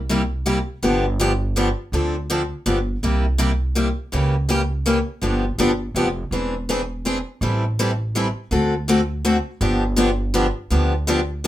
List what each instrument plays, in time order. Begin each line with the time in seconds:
Already playing: upright bass C2
0.09 steel-string acoustic guitar C3 G3 A#3 E4 G4
0.46 steel-string acoustic guitar C3 G3 A#3 E4 G4
0.83 upright bass G1, steel-string acoustic guitar D3 F3 B3 D4 G4
1.20 steel-string acoustic guitar D3 F3 B3 D4 G4
1.56 steel-string acoustic guitar D3 F3 B3 D4 G4
1.92 upright bass D2, steel-string acoustic guitar D3 F3 C4 D4 A4
2.30 steel-string acoustic guitar D3 F3 C4 D4 A4
2.66 upright bass G1, steel-string acoustic guitar D3 F3 B3 D4 G4
3.03 upright bass C2, steel-string acoustic guitar C3 G3 A#3 E4 G4
3.38 steel-string acoustic guitar C3 G3 A#3 E4 G4
3.75 steel-string acoustic guitar C3 G3 A#3 E4 G4
4.12 upright bass C#2, steel-string acoustic guitar C#3 E3 A#3 C#4 G4
4.49 steel-string acoustic guitar C#3 E3 A#3 C#4 G4
4.86 steel-string acoustic guitar C#3 E3 A#3 C#4 G4
5.22 upright bass G1, steel-string acoustic guitar D3 F3 B3 D4 G4
5.58 upright bass G1, steel-string acoustic guitar D3 F3 B3 D4 G4
5.95 upright bass F1, steel-string acoustic guitar D3 F3 B3 D4 G4
6.31 upright bass E1, steel-string acoustic guitar E3 C4 D4 G#4
6.69 steel-string acoustic guitar E3 C4 D4 G#4
7.05 steel-string acoustic guitar E3 C4 D4 G#4
7.41 upright bass A1, steel-string acoustic guitar E3 G3 C4 E4 A4
7.79 steel-string acoustic guitar E3 G3 C4 E4 A4
8.15 steel-string acoustic guitar E3 G3 C4 E4 A4
8.51 upright bass D2, steel-string acoustic guitar D3 A3 C4 F#4 A4
8.88 steel-string acoustic guitar D3 A3 C4 F#4 A4
9.25 steel-string acoustic guitar D3 A3 C4 F#4 A4
9.61 upright bass G1, steel-string acoustic guitar D3 F3 B3 D4 G4
9.96 steel-string acoustic guitar D3 F3 B3 D4 G4
10.34 steel-string acoustic guitar D3 F3 B3 D4 G4
10.70 upright bass D2, steel-string acoustic guitar D3 F3 B3 D4 G4
11.07 steel-string acoustic guitar D3 F3 B3 D4 G4
11.44 steel-string acoustic guitar D3